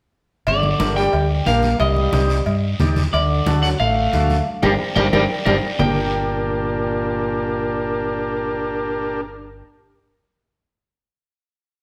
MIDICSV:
0, 0, Header, 1, 6, 480
1, 0, Start_track
1, 0, Key_signature, -2, "minor"
1, 0, Tempo, 332226
1, 678, Time_signature, 4, 2, 24, 8
1, 17086, End_track
2, 0, Start_track
2, 0, Title_t, "Clean electric guitar"
2, 0, Program_c, 0, 27
2, 696, Note_on_c, 0, 74, 84
2, 1358, Note_off_c, 0, 74, 0
2, 1395, Note_on_c, 0, 79, 106
2, 1844, Note_off_c, 0, 79, 0
2, 2122, Note_on_c, 0, 77, 93
2, 2598, Note_off_c, 0, 77, 0
2, 2604, Note_on_c, 0, 75, 75
2, 3989, Note_off_c, 0, 75, 0
2, 4522, Note_on_c, 0, 74, 77
2, 5195, Note_off_c, 0, 74, 0
2, 5239, Note_on_c, 0, 78, 92
2, 5312, Note_off_c, 0, 78, 0
2, 5486, Note_on_c, 0, 77, 96
2, 6478, Note_off_c, 0, 77, 0
2, 6686, Note_on_c, 0, 79, 93
2, 6693, Note_on_c, 0, 74, 91
2, 6694, Note_on_c, 0, 70, 75
2, 6842, Note_off_c, 0, 70, 0
2, 6844, Note_off_c, 0, 74, 0
2, 6845, Note_off_c, 0, 79, 0
2, 7160, Note_on_c, 0, 79, 100
2, 7166, Note_on_c, 0, 74, 86
2, 7173, Note_on_c, 0, 70, 94
2, 7320, Note_off_c, 0, 79, 0
2, 7322, Note_off_c, 0, 70, 0
2, 7322, Note_off_c, 0, 74, 0
2, 7411, Note_on_c, 0, 70, 96
2, 7418, Note_on_c, 0, 74, 90
2, 7424, Note_on_c, 0, 79, 80
2, 7567, Note_off_c, 0, 74, 0
2, 7568, Note_off_c, 0, 70, 0
2, 7568, Note_off_c, 0, 79, 0
2, 7881, Note_on_c, 0, 70, 91
2, 7888, Note_on_c, 0, 74, 85
2, 7897, Note_on_c, 0, 79, 75
2, 8042, Note_off_c, 0, 70, 0
2, 8042, Note_off_c, 0, 74, 0
2, 8042, Note_off_c, 0, 79, 0
2, 8371, Note_on_c, 0, 79, 76
2, 13886, Note_off_c, 0, 79, 0
2, 17086, End_track
3, 0, Start_track
3, 0, Title_t, "Transistor combo organ"
3, 0, Program_c, 1, 18
3, 1145, Note_on_c, 1, 62, 62
3, 1152, Note_on_c, 1, 67, 59
3, 1159, Note_on_c, 1, 70, 74
3, 1488, Note_off_c, 1, 62, 0
3, 1492, Note_off_c, 1, 67, 0
3, 1496, Note_off_c, 1, 70, 0
3, 2110, Note_on_c, 1, 62, 72
3, 2115, Note_on_c, 1, 67, 67
3, 2127, Note_on_c, 1, 70, 82
3, 2452, Note_off_c, 1, 62, 0
3, 2454, Note_off_c, 1, 67, 0
3, 2460, Note_off_c, 1, 70, 0
3, 3078, Note_on_c, 1, 63, 71
3, 3081, Note_on_c, 1, 67, 66
3, 3086, Note_on_c, 1, 72, 71
3, 3417, Note_off_c, 1, 63, 0
3, 3419, Note_off_c, 1, 67, 0
3, 3421, Note_off_c, 1, 72, 0
3, 4041, Note_on_c, 1, 63, 84
3, 4049, Note_on_c, 1, 67, 76
3, 4052, Note_on_c, 1, 74, 93
3, 4380, Note_off_c, 1, 63, 0
3, 4384, Note_off_c, 1, 67, 0
3, 4386, Note_off_c, 1, 74, 0
3, 5012, Note_on_c, 1, 62, 67
3, 5017, Note_on_c, 1, 66, 62
3, 5021, Note_on_c, 1, 69, 77
3, 5347, Note_off_c, 1, 62, 0
3, 5349, Note_off_c, 1, 66, 0
3, 5351, Note_off_c, 1, 69, 0
3, 5963, Note_on_c, 1, 62, 73
3, 5974, Note_on_c, 1, 66, 67
3, 5980, Note_on_c, 1, 69, 80
3, 6303, Note_off_c, 1, 62, 0
3, 6308, Note_off_c, 1, 66, 0
3, 6311, Note_off_c, 1, 69, 0
3, 6689, Note_on_c, 1, 67, 90
3, 6690, Note_on_c, 1, 70, 96
3, 6691, Note_on_c, 1, 62, 100
3, 6844, Note_off_c, 1, 67, 0
3, 6844, Note_off_c, 1, 70, 0
3, 6845, Note_off_c, 1, 62, 0
3, 7171, Note_on_c, 1, 70, 96
3, 7172, Note_on_c, 1, 62, 100
3, 7176, Note_on_c, 1, 67, 93
3, 7325, Note_off_c, 1, 62, 0
3, 7325, Note_off_c, 1, 70, 0
3, 7328, Note_off_c, 1, 67, 0
3, 7414, Note_on_c, 1, 67, 99
3, 7416, Note_on_c, 1, 62, 95
3, 7418, Note_on_c, 1, 70, 103
3, 7567, Note_off_c, 1, 67, 0
3, 7568, Note_off_c, 1, 62, 0
3, 7569, Note_off_c, 1, 70, 0
3, 7896, Note_on_c, 1, 62, 91
3, 7897, Note_on_c, 1, 67, 93
3, 7901, Note_on_c, 1, 70, 91
3, 8048, Note_off_c, 1, 62, 0
3, 8049, Note_off_c, 1, 67, 0
3, 8051, Note_off_c, 1, 70, 0
3, 8374, Note_on_c, 1, 62, 81
3, 8376, Note_on_c, 1, 67, 78
3, 8376, Note_on_c, 1, 70, 88
3, 13306, Note_off_c, 1, 62, 0
3, 13306, Note_off_c, 1, 67, 0
3, 13306, Note_off_c, 1, 70, 0
3, 17086, End_track
4, 0, Start_track
4, 0, Title_t, "Trombone"
4, 0, Program_c, 2, 57
4, 710, Note_on_c, 2, 50, 77
4, 1365, Note_off_c, 2, 50, 0
4, 1406, Note_on_c, 2, 55, 89
4, 1850, Note_off_c, 2, 55, 0
4, 2124, Note_on_c, 2, 58, 85
4, 2570, Note_off_c, 2, 58, 0
4, 2598, Note_on_c, 2, 55, 83
4, 3986, Note_off_c, 2, 55, 0
4, 4530, Note_on_c, 2, 50, 72
4, 5200, Note_off_c, 2, 50, 0
4, 5258, Note_on_c, 2, 54, 76
4, 5489, Note_off_c, 2, 54, 0
4, 5499, Note_on_c, 2, 57, 85
4, 6456, Note_off_c, 2, 57, 0
4, 6685, Note_on_c, 2, 55, 100
4, 6802, Note_off_c, 2, 55, 0
4, 7168, Note_on_c, 2, 55, 93
4, 7284, Note_off_c, 2, 55, 0
4, 7423, Note_on_c, 2, 55, 95
4, 7535, Note_off_c, 2, 55, 0
4, 7897, Note_on_c, 2, 55, 97
4, 8011, Note_off_c, 2, 55, 0
4, 8380, Note_on_c, 2, 46, 86
4, 13308, Note_off_c, 2, 46, 0
4, 17086, End_track
5, 0, Start_track
5, 0, Title_t, "Fingered electric bass"
5, 0, Program_c, 3, 33
5, 680, Note_on_c, 3, 31, 82
5, 1064, Note_off_c, 3, 31, 0
5, 1161, Note_on_c, 3, 31, 81
5, 1545, Note_off_c, 3, 31, 0
5, 1638, Note_on_c, 3, 38, 90
5, 2023, Note_off_c, 3, 38, 0
5, 2116, Note_on_c, 3, 34, 95
5, 2503, Note_off_c, 3, 34, 0
5, 2603, Note_on_c, 3, 36, 91
5, 2987, Note_off_c, 3, 36, 0
5, 3082, Note_on_c, 3, 36, 91
5, 3467, Note_off_c, 3, 36, 0
5, 3563, Note_on_c, 3, 43, 97
5, 3948, Note_off_c, 3, 43, 0
5, 4049, Note_on_c, 3, 39, 95
5, 4432, Note_off_c, 3, 39, 0
5, 4531, Note_on_c, 3, 38, 86
5, 4914, Note_off_c, 3, 38, 0
5, 5014, Note_on_c, 3, 38, 83
5, 5396, Note_off_c, 3, 38, 0
5, 5495, Note_on_c, 3, 33, 97
5, 5877, Note_off_c, 3, 33, 0
5, 5973, Note_on_c, 3, 38, 102
5, 6356, Note_off_c, 3, 38, 0
5, 6697, Note_on_c, 3, 31, 102
5, 6873, Note_off_c, 3, 31, 0
5, 7172, Note_on_c, 3, 31, 101
5, 7350, Note_off_c, 3, 31, 0
5, 7413, Note_on_c, 3, 31, 101
5, 7591, Note_off_c, 3, 31, 0
5, 7898, Note_on_c, 3, 31, 101
5, 8074, Note_off_c, 3, 31, 0
5, 8377, Note_on_c, 3, 31, 86
5, 13892, Note_off_c, 3, 31, 0
5, 17086, End_track
6, 0, Start_track
6, 0, Title_t, "Drums"
6, 673, Note_on_c, 9, 63, 31
6, 675, Note_on_c, 9, 56, 103
6, 677, Note_on_c, 9, 74, 71
6, 818, Note_off_c, 9, 63, 0
6, 820, Note_off_c, 9, 56, 0
6, 821, Note_off_c, 9, 74, 0
6, 913, Note_on_c, 9, 63, 73
6, 1057, Note_off_c, 9, 63, 0
6, 1152, Note_on_c, 9, 73, 68
6, 1153, Note_on_c, 9, 63, 98
6, 1155, Note_on_c, 9, 56, 63
6, 1296, Note_off_c, 9, 73, 0
6, 1298, Note_off_c, 9, 63, 0
6, 1299, Note_off_c, 9, 56, 0
6, 1396, Note_on_c, 9, 73, 72
6, 1541, Note_off_c, 9, 73, 0
6, 1633, Note_on_c, 9, 56, 80
6, 1638, Note_on_c, 9, 63, 33
6, 1638, Note_on_c, 9, 74, 77
6, 1778, Note_off_c, 9, 56, 0
6, 1782, Note_off_c, 9, 74, 0
6, 1783, Note_off_c, 9, 63, 0
6, 2114, Note_on_c, 9, 63, 85
6, 2116, Note_on_c, 9, 56, 71
6, 2116, Note_on_c, 9, 73, 72
6, 2259, Note_off_c, 9, 63, 0
6, 2260, Note_off_c, 9, 56, 0
6, 2261, Note_off_c, 9, 73, 0
6, 2349, Note_on_c, 9, 63, 70
6, 2355, Note_on_c, 9, 73, 70
6, 2494, Note_off_c, 9, 63, 0
6, 2500, Note_off_c, 9, 73, 0
6, 2594, Note_on_c, 9, 74, 69
6, 2595, Note_on_c, 9, 63, 33
6, 2596, Note_on_c, 9, 56, 109
6, 2739, Note_off_c, 9, 63, 0
6, 2739, Note_off_c, 9, 74, 0
6, 2740, Note_off_c, 9, 56, 0
6, 2837, Note_on_c, 9, 63, 67
6, 2981, Note_off_c, 9, 63, 0
6, 3073, Note_on_c, 9, 63, 94
6, 3080, Note_on_c, 9, 73, 67
6, 3081, Note_on_c, 9, 56, 61
6, 3217, Note_off_c, 9, 63, 0
6, 3225, Note_off_c, 9, 56, 0
6, 3225, Note_off_c, 9, 73, 0
6, 3315, Note_on_c, 9, 73, 69
6, 3460, Note_off_c, 9, 73, 0
6, 3554, Note_on_c, 9, 63, 36
6, 3556, Note_on_c, 9, 56, 80
6, 3559, Note_on_c, 9, 74, 72
6, 3699, Note_off_c, 9, 63, 0
6, 3700, Note_off_c, 9, 56, 0
6, 3703, Note_off_c, 9, 74, 0
6, 4039, Note_on_c, 9, 73, 64
6, 4040, Note_on_c, 9, 63, 82
6, 4040, Note_on_c, 9, 64, 78
6, 4050, Note_on_c, 9, 56, 68
6, 4183, Note_off_c, 9, 73, 0
6, 4184, Note_off_c, 9, 63, 0
6, 4184, Note_off_c, 9, 64, 0
6, 4195, Note_off_c, 9, 56, 0
6, 4280, Note_on_c, 9, 73, 73
6, 4283, Note_on_c, 9, 63, 72
6, 4283, Note_on_c, 9, 64, 67
6, 4424, Note_off_c, 9, 73, 0
6, 4428, Note_off_c, 9, 63, 0
6, 4428, Note_off_c, 9, 64, 0
6, 4524, Note_on_c, 9, 74, 72
6, 4530, Note_on_c, 9, 63, 34
6, 4533, Note_on_c, 9, 56, 106
6, 4668, Note_off_c, 9, 74, 0
6, 4675, Note_off_c, 9, 63, 0
6, 4678, Note_off_c, 9, 56, 0
6, 5002, Note_on_c, 9, 73, 72
6, 5006, Note_on_c, 9, 63, 99
6, 5010, Note_on_c, 9, 56, 65
6, 5147, Note_off_c, 9, 73, 0
6, 5150, Note_off_c, 9, 63, 0
6, 5154, Note_off_c, 9, 56, 0
6, 5249, Note_on_c, 9, 73, 73
6, 5393, Note_off_c, 9, 73, 0
6, 5485, Note_on_c, 9, 56, 79
6, 5490, Note_on_c, 9, 63, 36
6, 5492, Note_on_c, 9, 74, 76
6, 5629, Note_off_c, 9, 56, 0
6, 5635, Note_off_c, 9, 63, 0
6, 5637, Note_off_c, 9, 74, 0
6, 5968, Note_on_c, 9, 73, 68
6, 5972, Note_on_c, 9, 56, 69
6, 5973, Note_on_c, 9, 63, 86
6, 6112, Note_off_c, 9, 73, 0
6, 6116, Note_off_c, 9, 56, 0
6, 6118, Note_off_c, 9, 63, 0
6, 6208, Note_on_c, 9, 73, 69
6, 6217, Note_on_c, 9, 63, 69
6, 6352, Note_off_c, 9, 73, 0
6, 6361, Note_off_c, 9, 63, 0
6, 6685, Note_on_c, 9, 65, 103
6, 6686, Note_on_c, 9, 74, 91
6, 6692, Note_on_c, 9, 63, 100
6, 6830, Note_off_c, 9, 65, 0
6, 6831, Note_off_c, 9, 74, 0
6, 6837, Note_off_c, 9, 63, 0
6, 7165, Note_on_c, 9, 74, 98
6, 7167, Note_on_c, 9, 63, 102
6, 7176, Note_on_c, 9, 65, 100
6, 7309, Note_off_c, 9, 74, 0
6, 7312, Note_off_c, 9, 63, 0
6, 7320, Note_off_c, 9, 65, 0
6, 7410, Note_on_c, 9, 74, 109
6, 7413, Note_on_c, 9, 65, 94
6, 7415, Note_on_c, 9, 63, 97
6, 7554, Note_off_c, 9, 74, 0
6, 7557, Note_off_c, 9, 65, 0
6, 7560, Note_off_c, 9, 63, 0
6, 7886, Note_on_c, 9, 74, 94
6, 7891, Note_on_c, 9, 65, 100
6, 7896, Note_on_c, 9, 63, 99
6, 8031, Note_off_c, 9, 74, 0
6, 8035, Note_off_c, 9, 65, 0
6, 8041, Note_off_c, 9, 63, 0
6, 8365, Note_on_c, 9, 74, 94
6, 8368, Note_on_c, 9, 64, 94
6, 8376, Note_on_c, 9, 66, 98
6, 8510, Note_off_c, 9, 74, 0
6, 8512, Note_off_c, 9, 64, 0
6, 8520, Note_off_c, 9, 66, 0
6, 17086, End_track
0, 0, End_of_file